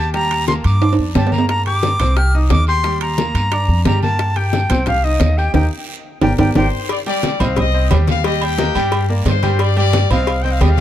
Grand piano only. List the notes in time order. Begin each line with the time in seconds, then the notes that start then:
Already playing: G4 G5 G6
0.14 G3 G4 G5
0.48 A#3 A#4 A#5
0.82 D4 D5 D6
1.15 G3 G4 G5
1.32 A#3 A#4 A#5
1.67 G4 G5 G6
2.01 C4 C5 C6
2.17 G4 G5 G6
2.35 D#4 D#5 D#6
2.68 G4 G5 G6
2.85 G3 G4 G5
3.18 A#3 A#4 A#5
3.52 D4 D5 D6
3.86 G3 G4 G5
4.03 A#3 A#4 G5
4.36 G4 G5 G6
4.70 C4 C5 C6
4.88 G4 G5 G6
5.04 D#4 D#5 D#6
5.38 G4 G5 G6
5.54 G4 A#4 D#5
6.22 G4 A#4 D5
6.39 G4 A#4 D5
6.56 G4 A#4 D5
7.06 G3 G4 G5
7.40 C4 C5 D#5
7.74 C4 C5 D#5
7.90 G3 G4 G5
8.24 G3 G4 G5
8.58 A#3 A#4 D#5
8.75 G3 G4 G5
9.09 A#3 A#4 D5
9.43 G3 G4 G5
9.77 G3 G4 G5
10.11 C4 C5 D#5
10.44 C4 C5 D#5
10.61 G3 G4 G5